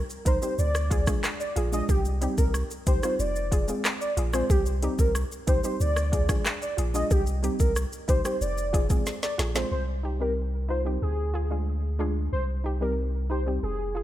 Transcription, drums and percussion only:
0.10 maracas, shaker
0.26 kick, closed hi-hat, maracas, shaker
0.42 shaker, maracas
0.58 shaker, maracas
0.75 cross-stick, shaker, maracas
0.91 kick, closed hi-hat, maracas, shaker
1.07 kick, cross-stick, maracas, shaker
1.23 cross-stick, clap, maracas, shaker
1.40 maracas, shaker
1.56 closed hi-hat, shaker
1.72 shaker, maracas
1.89 kick, shaker, maracas
2.05 maracas, shaker
2.22 closed hi-hat, shaker, maracas
2.38 kick, maracas, shaker
2.54 cross-stick, maracas, shaker
2.71 shaker, maracas
2.87 kick, closed hi-hat, maracas, shaker
3.03 cross-stick, maracas, shaker
3.19 shaker, maracas
3.36 shaker, maracas
3.52 kick, closed hi-hat, maracas, shaker
3.68 maracas, shaker
3.85 cross-stick, clap, maracas, shaker
4.01 shaker, maracas
4.17 closed hi-hat, shaker
4.33 cross-stick, shaker, maracas
4.50 kick, shaker, maracas
4.66 maracas, shaker
4.83 closed hi-hat, shaker, maracas
4.99 kick, shaker, maracas
5.15 cross-stick, shaker, maracas
5.31 shaker, maracas
5.47 kick, closed hi-hat, shaker, maracas
5.64 shaker, maracas
5.80 shaker, maracas
5.96 cross-stick, shaker, maracas
6.13 kick, closed hi-hat, shaker, maracas
6.29 kick, cross-stick, shaker, maracas
6.46 cross-stick, clap, maracas, shaker
6.62 maracas, shaker
6.78 closed hi-hat, shaker
6.94 shaker, maracas
7.11 kick, maracas, shaker
7.26 maracas, shaker
7.43 closed hi-hat, maracas, shaker
7.59 kick, maracas, shaker
7.76 cross-stick, maracas, shaker
7.92 maracas, shaker
8.08 kick, closed hi-hat, maracas, shaker
8.25 cross-stick, maracas, shaker
8.41 shaker, maracas
8.58 maracas, shaker
8.74 kick, closed hi-hat, high timbale, maracas, shaker
8.90 kick, maracas, shaker
9.06 snare, maracas, shaker
9.23 snare, maracas, shaker
9.39 snare, closed hi-hat, shaker
9.55 snare, high timbale, shaker, maracas

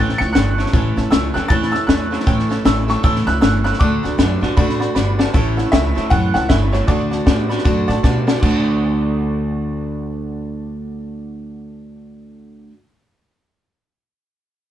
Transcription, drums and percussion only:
0.09 snare
0.21 snare
0.35 snare, hi-hat pedal
0.59 snare
0.66 snare
0.74 kick, snare
0.97 snare
1.12 snare, hi-hat pedal
1.36 snare
1.50 kick, snare
1.63 snare
1.74 snare
1.89 snare, hi-hat pedal
2.13 snare
2.20 snare
2.27 kick, snare
2.39 snare
2.51 snare
2.65 snare, hi-hat pedal
2.89 snare
3.04 kick, snare
3.16 snare
3.28 snare
3.42 snare, hi-hat pedal
3.65 snare
3.73 snare
3.81 kick, snare
4.04 snare
4.19 snare, hi-hat pedal
4.43 snare
4.57 kick, snare
4.69 snare
4.81 snare
4.96 snare, hi-hat pedal
5.19 snare
5.34 kick, snare
5.58 snare
5.73 kick, snare, hi-hat pedal
5.97 snare
6.11 kick, snare
6.35 snare
6.50 kick, snare, hi-hat pedal
6.73 snare
6.88 kick, snare
7.12 snare
7.27 kick, snare, hi-hat pedal
7.50 snare
7.58 snare
7.65 kick, snare
7.89 snare
8.04 kick, snare, hi-hat pedal
8.28 snare
8.43 kick, crash

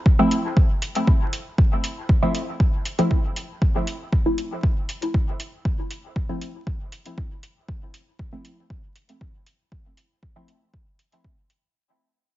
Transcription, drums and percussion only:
0.06 kick
0.31 closed hi-hat
0.57 kick
0.82 closed hi-hat
0.95 closed hi-hat
1.07 kick
1.33 closed hi-hat
1.58 kick
1.84 closed hi-hat
2.09 kick
2.35 closed hi-hat
2.60 kick
2.85 closed hi-hat
2.99 closed hi-hat
3.11 kick
3.36 closed hi-hat
3.62 kick
3.87 closed hi-hat
4.12 kick
4.38 closed hi-hat
4.63 kick
4.89 closed hi-hat
5.02 closed hi-hat
5.14 kick
5.40 closed hi-hat
5.65 kick
5.91 closed hi-hat
6.16 kick
6.41 closed hi-hat
6.67 kick
6.92 closed hi-hat
7.06 closed hi-hat
7.18 kick
7.43 closed hi-hat
7.68 kick
7.94 closed hi-hat
8.19 kick
8.45 closed hi-hat
8.70 kick
8.96 closed hi-hat
9.09 closed hi-hat
9.21 kick
9.46 closed hi-hat
9.72 kick
9.97 closed hi-hat
10.23 kick
10.48 closed hi-hat
10.74 kick
10.99 closed hi-hat
11.12 closed hi-hat
11.24 kick
11.50 closed hi-hat

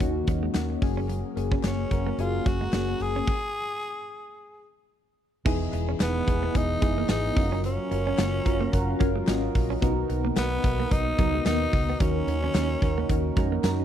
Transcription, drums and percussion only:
0.00 kick, closed hi-hat
0.27 kick, closed hi-hat
0.54 snare, clap, closed hi-hat
0.82 kick, open hi-hat
1.09 closed hi-hat
1.37 closed hi-hat
1.52 kick
1.63 snare, clap, closed hi-hat
1.91 kick, closed hi-hat
2.19 closed hi-hat
2.46 kick, closed hi-hat
2.73 snare, clap, closed hi-hat
3.00 open hi-hat
3.27 kick, crash
5.46 kick, crash
5.73 closed hi-hat
6.00 snare, clap, closed hi-hat, tambourine
6.28 kick, closed hi-hat
6.55 kick, closed hi-hat
6.82 kick, closed hi-hat
7.09 snare, clap, closed hi-hat, tambourine
7.37 kick, open hi-hat
7.64 closed hi-hat
7.92 closed hi-hat
8.18 snare, clap, closed hi-hat, tambourine
8.46 kick, closed hi-hat
8.73 kick, closed hi-hat
9.00 kick, closed hi-hat
9.27 snare, clap, closed hi-hat, tambourine
9.55 kick, open hi-hat
9.82 kick, closed hi-hat
10.10 closed hi-hat
10.36 snare, clap, closed hi-hat, tambourine
10.64 kick, closed hi-hat
10.91 kick, closed hi-hat
11.18 kick, closed hi-hat
11.46 snare, clap, closed hi-hat, tambourine
11.73 kick, open hi-hat
12.00 kick, closed hi-hat
12.28 closed hi-hat
12.54 snare, clap, closed hi-hat, tambourine
12.82 kick, closed hi-hat
13.09 kick, closed hi-hat
13.37 kick, closed hi-hat
13.64 snare, clap, closed hi-hat, tambourine

